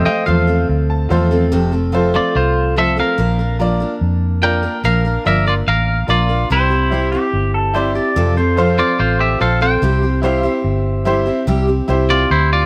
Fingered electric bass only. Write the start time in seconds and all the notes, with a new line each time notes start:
0.07 muted fingered electric bass stroke
0.28 E2
0.69 D2
1.11 E2
1.52 F1
2.35 C2
3.18 A#1
4.01 F2
4.84 A#1
5.26 G1
5.67 A1
6.08 A#1
6.50 C2
7.33 G1
8.16 F2
9.00 A1
9.41 A#1
9.82 C2
10.64 G1
11.47 C2
11.89 C2
12.30 D2